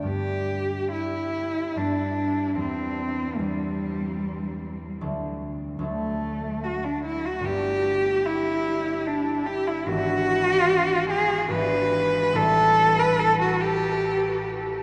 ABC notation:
X:1
M:3/4
L:1/16
Q:1/4=73
K:G
V:1 name="Cello"
G4 E4 D4 | C4 G,8 | z4 A,4 F D E F | G4 E4 D2 G E |
F6 ^G2 B4 | A3 B A F G4 z2 |]
V:2 name="Harp"
d12 | z12 | z12 | z12 |
z12 | z12 |]
V:3 name="Harp" clef=bass
[G,,G,B,D]8 [G,,G,B,D]4 | [E,,G,C]4 [E,,G,C]8 | [D,,F,A,D]4 [D,,F,A,D]8 | [G,,,G,B,D]12 |
[^G,,,E,B,D]8 [G,,,E,B,D]4 | [A,,,E,G,C]12 |]